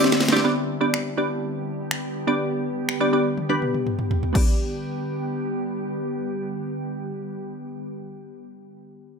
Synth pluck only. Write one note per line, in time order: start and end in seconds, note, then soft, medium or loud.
0.00 0.26 C4 loud
0.00 0.26 D4 medium
0.00 0.26 E4 medium
0.00 0.26 G4 medium
0.00 0.27 D5 loud
0.32 0.45 C4 loud
0.32 0.43 D4 loud
0.32 0.45 E4 loud
0.32 0.43 G4 loud
0.32 0.44 D5 loud
0.44 0.75 B3 loud
0.44 0.75 D4 medium
0.44 0.75 G4 medium
0.44 0.75 D5 loud
0.81 1.11 B3 medium
0.81 1.12 D4 medium
0.81 1.12 G4 medium
0.81 1.12 D5 loud
1.17 1.99 B3 medium
1.17 1.99 D4 medium
1.17 1.99 G4 medium
1.17 1.99 D5 medium
2.27 2.88 B3 medium
2.27 2.88 D4 medium
2.27 2.89 G4 medium
2.27 2.89 D5 loud
3.00 3.11 B3 loud
3.00 3.11 D4 medium
3.00 3.11 G4 medium
3.00 3.11 D5 loud
3.13 3.43 B3 medium
3.13 3.43 D4 medium
3.13 3.44 G4 medium
3.13 3.44 D5 loud
3.49 4.20 B3 loud
3.49 4.21 D4 medium
3.49 4.21 G4 medium
3.49 4.21 B4 loud
4.33 7.50 B3 medium
4.33 7.51 D4 medium
4.33 7.53 G4 medium
4.37 7.54 D5 medium